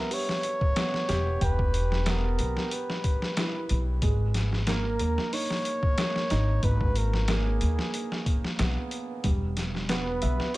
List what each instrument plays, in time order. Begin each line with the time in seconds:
Already playing: felt piano G3 B3 E5, muted trumpet A#4
0.11 felt piano G4, muted trumpet C#5, open hi-hat
0.29 snare
0.43 closed hi-hat
0.61 kick
0.76 felt piano B3, snare, closed hi-hat
0.94 snare
1.08 upright bass E1, felt piano G4, snare, closed hi-hat
1.41 upright bass E1, muted trumpet B4, felt piano G5, kick, closed hi-hat
1.59 kick
1.74 closed hi-hat
1.92 snare
2.06 felt piano B3, muted trumpet A#4, snare, closed hi-hat
2.39 upright bass B1, closed hi-hat
2.57 snare
2.71 muted trumpet B4, closed hi-hat
2.90 snare
3.04 kick, closed hi-hat
3.22 snare
3.37 felt piano E4, muted trumpet B4, snare, closed hi-hat
3.69 upright bass B1, closed hi-hat
4.02 upright bass G#1, felt piano G#3, kick, closed hi-hat
4.34 snare, closed hi-hat
4.53 snare
4.67 felt piano A#3, muted trumpet A#4, snare, closed hi-hat
4.99 upright bass D#2, felt piano A#4, closed hi-hat
5.18 snare
5.32 felt piano D#4, muted trumpet C#5, open hi-hat
5.51 snare
5.65 closed hi-hat
5.83 kick
5.98 felt piano A#3, snare, closed hi-hat
6.16 snare
6.30 upright bass G#1, felt piano D#4, snare, closed hi-hat
6.63 upright bass G#1, felt piano B4, muted trumpet B4, kick, closed hi-hat
6.81 kick
6.96 muted trumpet A#4, closed hi-hat
7.13 snare
7.28 felt piano A#3, muted trumpet G#4, snare, closed hi-hat
7.61 upright bass D#2, closed hi-hat
7.79 snare
7.94 closed hi-hat
8.12 snare
8.26 kick, closed hi-hat
8.45 snare
8.59 upright bass B1, felt piano B3, snare, closed hi-hat
8.91 closed hi-hat
9.24 upright bass E1, felt piano G3, kick, closed hi-hat
9.57 snare, closed hi-hat
9.75 snare
9.89 felt piano B3, muted trumpet B4, snare, closed hi-hat
10.22 upright bass B1, felt piano E5, closed hi-hat
10.40 snare